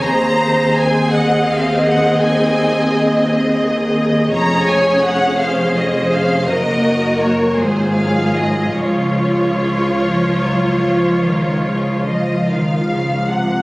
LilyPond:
<<
  \new Staff \with { instrumentName = "Violin section" } { \time 12/8 \key des \major \tempo 4. = 54 bes''4 aes''8 ges''8 f''8 ges''8 aes''4. r4. | bes''8 aes''8 ges''8 f''8 ees''8 f''8 ees''4 des''8 c''8 f''8 ees''8 | des''1 ees''8 f''4 ges''8 | }
  \new Staff \with { instrumentName = "Violin section" } { \time 12/8 \key des \major c''4. ees''1~ ees''8 | des''4. c''4. bes'4. aes'4. | f'1~ f'4~ f'16 r8. | }
  \new Staff \with { instrumentName = "Viola section" } { \time 12/8 \key des \major << { aes'1. | aes'2. ges'4. f'4.~ | f'1~ f'4.~ f'16 r16 | } \\ { c'1. | des'2. bes4. ges4. | f1~ f4.~ f16 r16 | } >> }
  \new Staff \with { instrumentName = "Cello section" } { \clef bass \time 12/8 \key des \major ees,1. | f,2. ges,4. aes,4. | des4. f8 ges8 f8 ees8 des8 f8 ees8 des8 c8 | }
  \new Staff \with { instrumentName = "Double bass section" } { \clef bass \time 12/8 \key des \major ees,1. | f,,2. ges,,4. aes,,4. | des,1~ des,4.~ des,16 r16 | }
>>